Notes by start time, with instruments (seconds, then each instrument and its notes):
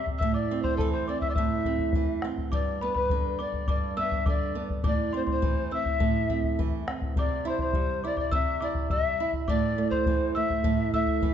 Already playing: nylon-string guitar C3 C4
0.07 bombo low
0.18 pan flute E5, celesta E6, bombo low
0.22 nylon-string guitar A2
0.34 pan flute D5, celesta D6
0.51 nylon-string guitar C4
0.62 pan flute C5, celesta C6, bombo low
0.76 pan flute A4, celesta A5, bombo low
0.81 nylon-string guitar E3
0.92 pan flute C5, celesta C6
1.08 nylon-string guitar C4, pan flute D5, celesta D6
1.20 pan flute E5, celesta E6, bombo low
1.29 pan flute D5, celesta D6
1.34 nylon-string guitar A2, pan flute E5, celesta E6, bombo low
1.65 nylon-string guitar C4, bombo low
1.79 bombo low
1.93 nylon-string guitar E3, bombo low
2.22 nylon-string guitar C4, bombo rim
2.38 bombo low
2.52 nylon-string guitar G2, pan flute D5, celesta D6, bombo low
2.81 nylon-string guitar B3, pan flute B4, celesta B5
2.95 pan flute B4, celesta B5, bombo low
3.10 nylon-string guitar D3, bombo low
3.39 nylon-string guitar B3, pan flute D5, celesta D6
3.53 bombo low
3.68 nylon-string guitar G2, pan flute D5, celesta D6, bombo low
3.97 nylon-string guitar B3, pan flute E5, celesta E6
4.12 bombo low
4.26 nylon-string guitar D3, pan flute D5, celesta D6, bombo low
4.55 nylon-string guitar B3
4.70 bombo low
4.84 nylon-string guitar A2, pan flute D5, celesta D6, bombo low
5.13 nylon-string guitar C4, pan flute C5, celesta C6
5.27 pan flute C5, celesta C6, bombo low
5.42 nylon-string guitar E3, bombo low
5.71 nylon-string guitar C4, pan flute E5, celesta E6
5.86 bombo low
6.00 nylon-string guitar A2, bombo low
6.29 nylon-string guitar C4, bombo low
6.44 bombo low
6.59 nylon-string guitar E3, bombo low
6.88 nylon-string guitar C4, bombo rim
7.02 bombo low
7.16 nylon-string guitar C3, pan flute D5, celesta D6, bombo low
7.45 nylon-string guitar E4, pan flute C5, celesta C6
7.58 pan flute C5, celesta C6, bombo low
7.73 nylon-string guitar G3, bombo low
8.04 nylon-string guitar E4, pan flute D5, celesta D6
8.17 pan flute D5, celesta D6, bombo low
8.31 nylon-string guitar C3, pan flute E5, celesta E6, bombo low
8.60 nylon-string guitar E4, pan flute D5, celesta D6
8.75 bombo low
8.90 nylon-string guitar G3, pan flute E5, celesta E6, bombo low
9.20 nylon-string guitar E4
9.33 bombo low
9.48 nylon-string guitar A2, pan flute D5, celesta D6, bombo low
9.78 nylon-string guitar A3
9.90 pan flute C5, celesta C6, bombo low
10.06 nylon-string guitar E3, bombo low
10.35 nylon-string guitar A3, pan flute E5, celesta E6
10.50 bombo low
10.64 nylon-string guitar A2, bombo low
10.93 nylon-string guitar A3, pan flute E5, celesta E6, bombo low
11.07 bombo low
11.22 nylon-string guitar E3, bombo low